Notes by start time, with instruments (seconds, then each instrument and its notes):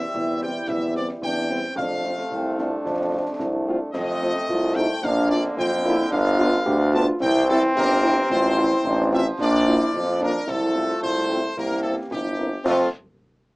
Already playing: trombone section C3 G3, euphonium G4, trumpet section E5
0.00 snare
0.14 tuba E2, euphonium E4, concert bass drum
0.41 french horn section G3 C4 G4, trumpet section G5, snare
0.68 tuba E2, trumpet section E5, concert bass drum, snare
0.95 french horn section G3 C4 G4, trumpet section D5, snare
1.08 snare
1.21 tuba E2, euphonium D4, trumpet section G5, concert bass drum, snare
1.50 french horn section G3 C4 G4, euphonium C4
1.76 tuba F2, trombone section C3 A3, euphonium D4, trumpet section F5, concert bass drum, snare, crash
2.04 french horn section A3 C4 F4, snare
2.18 snare
2.31 tuba C2, euphonium C4, concert bass drum
2.58 french horn section A3 C4 F4, euphonium D4, snare
2.85 tuba F2, concert bass drum, snare
3.12 french horn section A3 C4 F4
3.39 tuba C2, concert bass drum, snare
3.67 french horn section A3 C4 F4
3.93 tuba F2, trombone section C3 A3, euphonium C4, trumpet section D#5, concert bass drum, snare, crash
4.22 french horn section A3 C4 F4, snare
4.36 snare
4.48 tuba C2, euphonium F4, concert bass drum
4.75 french horn section A3 C4 F4, euphonium D#4, trumpet section G5, snare
5.02 tuba A#1, trombone section D3 A#3, euphonium D4, trumpet section F5, concert bass drum, snare
5.29 french horn section A#3 D4 F4, trumpet section D5, snare
5.44 snare
5.57 tuba F2, euphonium F4, trumpet section G5, concert bass drum, snare
5.85 french horn section A#3 D4 F4, euphonium E4
6.10 tuba G1, trombone section B3, euphonium D4, trumpet section F5, concert bass drum, snare, crash
6.37 french horn section B3 D4 G4, euphonium F4, snare
6.52 snare
6.65 tuba D2, euphonium G4, concert bass drum
6.93 french horn section B3 D4 G4, euphonium F4, trumpet section A5, snare
7.20 tuba C2, trombone section E3 C4, euphonium E4, trumpet section G5, concert bass drum, snare
7.48 french horn section C4 E4 G4, trumpet section A4, snare
7.62 snare
7.75 tuba G1, euphonium G4, trumpet section A#4, concert bass drum, snare
8.02 french horn section C4 E4 G4
8.30 tuba A1, trombone section F3, euphonium F4, trumpet section C5, concert bass drum, snare, crash
8.56 french horn section C4 F4, euphonium E4, snare
8.71 snare
8.84 tuba A1, euphonium D4, concert bass drum
9.11 euphonium C4, french horn section C4 F4, trumpet section E5, snare
9.38 tuba A#1, trombone section A#3, euphonium D4, trumpet section D5, concert bass drum, snare
9.66 french horn section A#3 D4 F4, euphonium E4, snare
9.80 snare
9.93 tuba F2, euphonium F4, concert bass drum, snare
10.20 french horn section A#3 D4 F4, euphonium D4, trumpet section A#4
10.47 tuba C2, trombone section F3 A3, euphonium E4, trumpet section A4, concert bass drum, snare, crash
10.75 french horn section A3 C4 F4, euphonium F4, snare
10.89 snare
11.02 tuba C2, trumpet section C5, concert bass drum
11.29 french horn section A3 C4 F4, snare
11.57 tuba C2, trombone section E3 A#3, euphonium G4, trumpet section A#4, concert bass drum, snare
11.82 french horn section A#3 C4 E4, trumpet section A4
12.11 tuba G1, euphonium E4, trumpet section G4, concert bass drum, snare
12.38 french horn section A#3 C4 E4
12.65 tuba F2, trombone section F3 A3, french horn section A3 C4 F4, trumpet section F4, concert bass drum, snare, crash